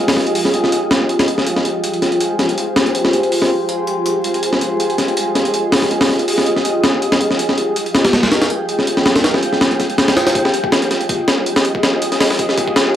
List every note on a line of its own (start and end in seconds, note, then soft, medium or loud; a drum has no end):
0.00 10.32 F4 medium
0.00 10.32 G4 medium
0.00 10.32 G#4 medium
0.00 1.45 D#5 medium
0.08 snare medium
0.08 open hi-hat medium
0.17 snare soft
0.27 closed hi-hat medium
0.35 open hi-hat medium
0.45 snare soft
0.54 closed hi-hat medium
0.64 snare soft
0.72 closed hi-hat medium
0.91 snare loud
0.91 closed hi-hat medium
1.09 closed hi-hat medium
1.19 snare medium
1.19 closed hi-hat medium
1.28 closed hi-hat medium
1.38 snare soft
1.47 4.42 C5 medium
1.47 closed hi-hat medium
1.56 snare soft
1.65 closed hi-hat medium
1.84 closed hi-hat medium
1.94 closed hi-hat soft
2.02 snare soft
2.02 closed hi-hat medium
2.12 closed hi-hat soft
2.21 closed hi-hat medium
2.39 snare soft
2.39 closed hi-hat medium
2.49 closed hi-hat soft
2.58 closed hi-hat medium
2.76 snare loud
2.76 closed hi-hat medium
2.86 closed hi-hat soft
2.95 closed hi-hat medium
3.05 snare medium
3.13 closed hi-hat medium
3.23 closed hi-hat soft
3.32 open hi-hat medium
3.42 snare soft
3.69 closed hi-hat medium
3.87 closed hi-hat medium
4.06 closed hi-hat medium
4.24 closed hi-hat medium
4.34 closed hi-hat soft
4.43 7.38 D#5 medium
4.43 closed hi-hat medium
4.53 snare soft
4.61 closed hi-hat medium
4.80 closed hi-hat medium
4.90 closed hi-hat soft
4.98 snare soft
4.98 closed hi-hat medium
5.08 closed hi-hat soft
5.17 closed hi-hat medium
5.35 snare soft
5.35 closed hi-hat medium
5.45 closed hi-hat soft
5.54 closed hi-hat medium
5.72 snare loud
5.72 open hi-hat medium
5.82 snare soft
5.91 closed hi-hat medium
6.01 snare loud
6.01 open hi-hat medium
6.09 snare soft
6.19 closed hi-hat medium
6.28 open hi-hat medium
6.38 snare soft
6.46 closed hi-hat medium
6.56 snare soft
6.65 closed hi-hat medium
6.84 snare loud
6.84 closed hi-hat medium
7.02 closed hi-hat medium
7.12 snare loud
7.12 closed hi-hat medium
7.21 closed hi-hat medium
7.31 snare soft
7.39 10.34 G5 medium
7.39 closed hi-hat medium
7.49 snare soft
7.58 closed hi-hat medium
7.76 closed hi-hat medium
7.86 closed hi-hat soft
7.95 snare medium
7.95 closed hi-hat medium
8.05 snare medium
8.05 closed hi-hat medium
8.13 snare loud
8.13 closed hi-hat medium
8.23 snare loud
8.23 closed hi-hat medium
8.32 snare medium
8.32 closed hi-hat medium
8.42 snare medium
8.42 closed hi-hat medium
8.50 closed hi-hat medium
8.69 closed hi-hat medium
8.79 snare soft
8.87 closed hi-hat medium
8.97 snare medium
9.06 snare loud
9.06 closed hi-hat medium
9.16 snare loud
9.16 closed hi-hat medium
9.24 snare loud
9.24 closed hi-hat medium
9.34 snare medium
9.43 closed hi-hat medium
9.53 snare soft
9.61 snare medium
9.61 closed hi-hat medium
9.71 closed hi-hat soft
9.80 snare soft
9.80 closed hi-hat medium
9.90 closed hi-hat soft
9.98 snare medium
9.98 closed hi-hat medium
10.08 snare medium
10.08 closed hi-hat medium
10.17 snare loud
10.17 closed hi-hat medium
10.27 snare loud
10.27 closed hi-hat medium
10.35 12.96 F4 medium
10.35 12.96 G4 medium
10.35 12.96 G#4 medium
10.35 12.96 D#5 medium
10.35 kick loud
10.35 closed hi-hat medium
10.45 snare soft
10.54 closed hi-hat medium
10.64 kick medium
10.72 snare loud
10.72 closed hi-hat medium
10.82 closed hi-hat soft
10.91 snare soft
10.91 closed hi-hat medium
11.01 closed hi-hat soft
11.09 kick loud
11.09 closed hi-hat medium
11.28 snare loud
11.28 closed hi-hat medium
11.46 closed hi-hat medium
11.56 snare loud
11.56 closed hi-hat medium
11.65 closed hi-hat medium
11.75 kick medium
11.83 snare loud
11.83 closed hi-hat medium
12.02 closed hi-hat medium
12.12 snare soft
12.12 closed hi-hat medium
12.20 snare loud
12.20 open hi-hat medium
12.30 snare medium
12.39 kick medium
12.39 closed hi-hat medium
12.49 snare soft
12.57 kick loud
12.57 closed hi-hat medium
12.68 kick medium
12.76 snare loud
12.76 closed hi-hat medium